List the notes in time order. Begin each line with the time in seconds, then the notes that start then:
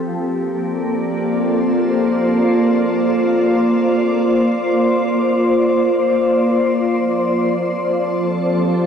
Already playing: C4 G4 A4
0.03 A#3
0.43 D5
0.63 F4
1.00 C5
6.91 F3
7.51 C4
7.77 A4
8.35 G4